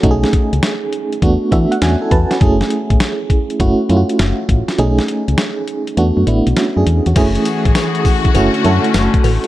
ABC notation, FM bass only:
X:1
M:4/4
L:1/16
Q:"Swing 16ths" 1/4=101
K:F#m
V:1 name="FM bass" clef=bass
B,,,2 z C,, z4 E,, z E, z E,, z E,, z | F,,,2 z A,,, z4 F,,, z F,, z F,,, z A,,, z | B,,,2 z C,, z4 E,, F,, A,,, B,,, z F,, E,, E,, | F,,,2 z A,,, z4 F,,, z F,, z F,,, z A,,, z |]